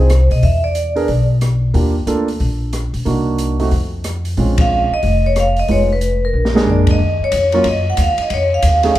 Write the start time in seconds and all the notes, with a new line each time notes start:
Already playing: C2 C5
0.10 cross-stick, closed hi-hat
0.30 B2 D#5, open hi-hat
0.43 E2 E5, kick, open hi-hat
0.64 D5
0.75 closed hi-hat
0.96 B3 D4 G#4 A#4, open hi-hat
1.08 B1, kick, open hi-hat
1.41 cross-stick, closed hi-hat
1.74 D#2 A#3 D4 F4 G4, kick, open hi-hat
2.06 D2 A#3 D4 F4 A4, closed hi-hat
2.28 open hi-hat
2.40 A#1, kick, open hi-hat
2.73 cross-stick, closed hi-hat
2.93 A#1, open hi-hat
3.05 C2 A#3 D4 D#4 F#4, kick, open hi-hat
3.38 closed hi-hat
3.59 A3 C4 D#4 F#4, open hi-hat
3.71 F2, kick, open hi-hat
4.04 cross-stick, closed hi-hat
4.25 open hi-hat
4.37 A#1 G#3 C4 C#4 F4, kick, open hi-hat
4.58 F5, kick, ride
4.90 D#5, muted upright bass stroke
5.03 F1, kick, open hi-hat
5.26 C#5
5.36 F5, cross-stick, closed hi-hat
5.57 D#5, open hi-hat
5.68 F1 G#3 B3 D#4 F4 C#5, kick, open hi-hat
5.93 B4
6.01 closed hi-hat
6.25 A#4
6.33 A#1
6.45 snare
6.55 G#3 A#3 D4 G#4, snare
6.67 D5, floor tom
6.87 D#5, kick, ride
6.99 D#2
7.20 muted upright bass stroke
7.24 C#5
7.32 F2, kick, hi-hat pedal, ride
7.52 F#3 A#3 C#4 F4, ride
7.64 F#2, kick, ride
7.69 D#5
7.90 F#5
7.97 D#2, kick, hi-hat pedal, ride
8.02 F5
8.18 muted upright bass stroke, ride
8.22 D#5
8.30 F2 C#5, kick, ride
8.54 F5
8.62 D#2, kick, hi-hat pedal, ride
8.67 F5
8.83 A3 C#4 D#4 G#4, snare, ride
8.95 C#2, kick, ride